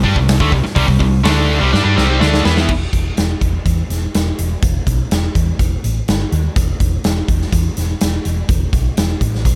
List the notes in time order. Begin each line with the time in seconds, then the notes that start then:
0.04 G2 G3 D4, kick
0.16 C2 C3 G3, kick
0.28 snare, open hi-hat
0.40 D2 D3 A3, kick
0.52 C2 C3 G3, kick
0.64 muted distorted electric guitar stroke, muted overdriven electric guitar stroke, snare
0.76 C2 C3 G3, kick, open hi-hat
0.88 C2 C3 G3, kick
1.00 C2 C3 G3, kick
1.24 D2 D3 A3 D4, snare, open hi-hat
1.60 C2 C3 G3
1.73 G2 G3 D4, snare
1.84 G2 G3 D4
1.96 C2 C3 G3 C4, snare
2.20 D2 D3 A3 D4, snare
2.34 snare
2.45 E2 E3 B3 E4, snare
2.57 snare
2.69 E1, kick, crash
2.93 E1, kick, closed hi-hat
3.17 E1, snare, closed hi-hat
3.41 E1, kick, closed hi-hat
3.66 E2, kick, closed hi-hat
3.90 E1, snare, closed hi-hat
4.14 E1, snare, closed hi-hat
4.38 E1, closed hi-hat
4.63 E1, kick, closed hi-hat
4.87 B1, kick, closed hi-hat
5.11 E1, snare, closed hi-hat
5.35 E2, kick, closed hi-hat
5.59 E1, kick, closed hi-hat
5.84 A1, closed hi-hat
6.08 G1, snare, closed hi-hat
6.32 D#2, closed hi-hat
6.56 E1, kick, closed hi-hat
6.80 E1, kick, closed hi-hat
7.04 E1, snare, closed hi-hat
7.28 E1, kick, closed hi-hat
7.41 snare
7.52 E2, kick, closed hi-hat
7.77 E1, snare, closed hi-hat
8.01 E1, snare, closed hi-hat
8.25 E1, closed hi-hat
8.49 E1, kick, closed hi-hat
8.73 B1, kick, closed hi-hat
8.97 E1, snare, closed hi-hat
9.21 A1, kick, closed hi-hat
9.35 snare
9.45 B1, kick, closed hi-hat